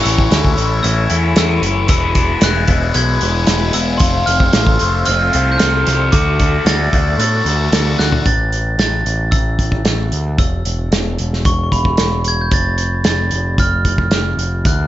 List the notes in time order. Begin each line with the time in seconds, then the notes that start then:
Already playing: A2 E3 A4 C#5 E5 C#6
0.03 A1 A3 C#4 E4 E6, closed hi-hat
0.18 kick
0.30 D2 E3 A3 C#4 E4, snare, closed hi-hat
0.45 kick
0.56 A1 A2 E3 A3 C#4 E4, closed hi-hat
0.82 A1 E3 A3 C#4 E4 E6, closed hi-hat
1.10 E2 A3 C#4 E4, closed hi-hat
1.36 E2 A2 E3 A3 C#4 E4 E6, snare, closed hi-hat
1.61 F#1 E3 A3 C#4 E4, closed hi-hat
1.87 E1 E2 B2 E3 G#3 B3 E4 G#4 B4 B5 E6, kick, closed hi-hat
2.15 E3 G#3 B3 E4, kick, closed hi-hat
2.41 E1 E3 G#3 B3 E4 F#6, snare, closed hi-hat
2.67 E1 E2 B2 E3 G#3 B3 E4, kick, closed hi-hat
2.93 B1 E3 G#3 B3 E4 G#6, closed hi-hat
3.21 E1 E3 G#3 B3 E4, closed hi-hat
3.47 E1 E2 B2 E3 G#3 B3 E4, snare, closed hi-hat
3.73 E1 E3 G#3 B3 E4 E6, closed hi-hat
3.98 F1 F2 C3 F3 A3 C4 F4 C6, kick, closed hi-hat
4.02 A4 C5 F5 C6
4.26 F1 F3 A3 C4 F4 F6, closed hi-hat
4.40 kick
4.53 A1 F3 A3 C4 F4, snare, closed hi-hat
4.67 kick
4.79 F1 F2 C3 F3 A3 C4 F4, closed hi-hat
5.05 F1 F3 A3 C4 F4 F6, closed hi-hat
5.33 C2 F3 A3 C4 F4, closed hi-hat
5.52 G6
5.58 F2 C3 F3 A3 C4 F4 F6, snare, closed hi-hat
5.62 C2
5.85 C2 F3 A3 C4 F4, snare, closed hi-hat
6.12 D2 D3 A3 D4 F#4 D5 F#5 B5 D6, kick, closed hi-hat
6.39 A3 D4 F#4, kick, closed hi-hat
6.65 D2 D3 A3 B3 D4 A6, snare, closed hi-hat
6.69 F#4
6.93 D2 D3 A3 D4 F#4, kick, closed hi-hat
7.18 A2 D3 A3 B3 D4 F#4 A6, closed hi-hat
7.45 D2 A3 D4 F#4, closed hi-hat
7.72 D2 D3 A3 B3 D4 F#4, snare, closed hi-hat
7.98 D2 D3 A3 D4 F#4 F#6, snare
8.12 floor tom
8.26 A1 A6, kick, closed hi-hat
8.52 closed hi-hat
8.78 A1 A6, snare, closed hi-hat
9.05 A1, closed hi-hat
9.31 A1 E6, kick, closed hi-hat
9.59 kick, closed hi-hat
9.72 kick
9.84 A1, snare, closed hi-hat
10.12 D2, closed hi-hat
10.38 E1 E6, kick, closed hi-hat
10.65 E1, closed hi-hat
10.91 E1, snare, closed hi-hat
11.18 E1, closed hi-hat
11.33 snare
11.45 E1 C#6, kick, closed hi-hat
11.63 C#6
11.72 E1 B5, kick, closed hi-hat
11.85 kick
11.97 E1, snare, closed hi-hat
12.24 G#6, closed hi-hat
12.41 G6
12.51 F1 A6, kick, closed hi-hat
12.78 closed hi-hat
13.04 F1 A6, snare, closed hi-hat
13.31 F1, closed hi-hat
13.58 F1 F6, kick, closed hi-hat
13.85 kick, closed hi-hat
13.98 kick
14.11 F1, snare, closed hi-hat
14.37 F1, closed hi-hat
14.65 D2 F#6, kick, closed hi-hat